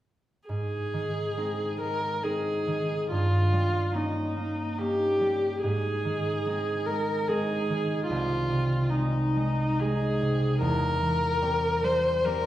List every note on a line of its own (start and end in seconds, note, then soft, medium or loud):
0.48 3.14 G#2 soft
0.48 1.76 G#4 medium
0.93 2.66 D#3 soft
1.37 1.79 G#3 soft
1.37 2.23 C4 soft
1.37 2.23 D#4 soft
1.80 2.22 G#3 soft
1.80 2.25 A#4 medium
2.23 3.14 G#3 soft
2.23 3.14 C4 soft
2.23 3.93 D#4 soft
2.23 3.10 G#4 medium
2.67 3.14 D#3 soft
3.11 5.66 G2 soft
3.11 3.96 F4 medium
3.53 5.19 G3 soft
3.92 4.35 A#3 soft
3.92 4.78 C#4 soft
3.92 4.79 D#4 soft
3.97 4.79 D#4 soft
4.37 4.78 A#3 soft
4.78 5.66 A#3 soft
4.78 5.66 C#4 soft
4.78 6.46 D#4 soft
4.78 5.61 G4 medium
5.21 5.65 G3 soft
5.62 8.12 G#2 soft
5.62 6.88 G#4 medium
6.05 7.68 D#3 soft
6.46 6.87 G#3 soft
6.46 7.28 C4 soft
6.46 7.29 D#4 soft
6.87 7.28 G#3 soft
6.87 7.29 A#4 medium
7.27 8.90 G#3 soft
7.27 8.90 C4 soft
7.27 8.91 D#4 soft
7.27 8.06 G#4 medium
7.70 8.12 D#3 soft
8.07 10.64 C2 soft
8.07 8.91 F4 medium
8.50 10.21 C3 soft
8.90 9.35 G#3 soft
8.90 9.80 C4 soft
8.90 9.82 D#4 soft
8.90 9.81 D#4 soft
9.36 9.80 G#3 soft
9.80 10.64 G#3 soft
9.80 11.41 C4 soft
9.80 10.64 D#4 soft
9.80 10.60 G#4 medium
10.22 10.63 C3 soft
10.60 12.46 E2 soft
10.60 11.85 A#4 medium
11.01 12.46 E3 soft
11.41 11.82 G3 soft
11.41 12.25 C4 soft
11.41 12.25 G4 soft
11.83 12.25 G3 soft
11.83 12.27 C5 medium
12.25 12.46 G3 soft
12.25 12.46 C4 soft
12.25 12.46 G4 soft
12.25 12.46 A#4 medium